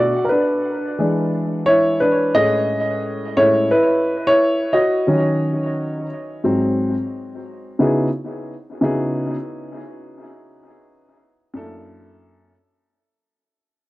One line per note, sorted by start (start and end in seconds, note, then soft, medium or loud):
0.00 0.11 B2 medium
0.00 0.11 A3 medium
0.00 0.12 D4 medium
0.00 0.24 F#4 medium
0.00 0.25 D5 medium
0.25 0.30 A#4 medium
0.29 0.98 D4 medium
0.29 1.28 B4 medium
0.99 2.31 E3 medium
0.99 2.31 G#3 medium
0.99 2.00 D4 medium
1.66 1.99 E4 medium
1.66 2.01 C#5 loud
2.00 2.33 D4 medium
2.00 2.35 B4 medium
2.34 3.35 A2 medium
2.34 3.36 G#3 soft
2.34 3.36 C#4 medium
2.34 3.33 G#4 medium
2.34 3.40 D#5 loud
3.37 3.68 A2 medium
3.37 3.68 G#3 soft
3.37 3.68 C#4 medium
3.37 3.69 E4 medium
3.37 3.72 C#5 loud
3.71 4.24 E4 medium
3.71 4.29 B4 medium
4.27 4.71 E4 medium
4.27 4.75 C#5 loud
4.73 6.06 F#4 medium
4.73 6.05 D#5 medium
5.07 6.05 D#3 medium
5.07 6.06 F#3 soft
5.07 6.06 C#4 medium
6.44 6.93 G#2 medium
6.44 6.93 F#3 medium
6.44 6.93 C4 medium
7.79 8.06 C#3 medium
7.79 8.07 B3 medium
7.79 8.07 D#4 medium
7.79 8.07 E4 medium
7.79 8.08 F#4 medium
7.79 8.08 G#4 medium
8.81 9.34 C#3 medium
8.81 9.34 B3 medium
8.81 9.34 D#4 medium
8.81 9.34 E4 medium
8.81 9.35 F#4 medium
8.81 9.35 G#4 medium
11.54 12.52 F#2 medium
11.54 11.63 A3 medium
11.54 12.53 D4 medium
11.54 12.53 E4 medium
11.54 12.53 A4 medium
11.61 12.55 A#3 medium